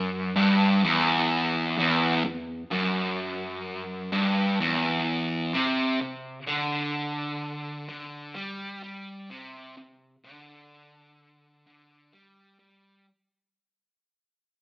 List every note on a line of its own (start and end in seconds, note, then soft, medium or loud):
0.00 0.36 F#2 loud
0.36 0.82 G2 loud
0.83 1.76 E2 loud
1.77 2.23 E2 loud
2.25 2.62 E2 medium
2.71 4.11 F#2 loud
4.12 4.58 G2 medium
4.60 5.53 E2 loud
5.54 5.99 C3 loud
6.01 6.39 C3 medium
6.47 7.87 D3 loud
7.89 8.35 D3 medium
8.35 8.81 G3 loud
8.83 9.29 G3 medium
9.30 9.76 C3 loud
9.77 10.15 C3 medium
10.24 11.64 D3 loud
11.67 12.12 D3 medium
12.13 12.58 G3 medium
12.59 13.05 G3 medium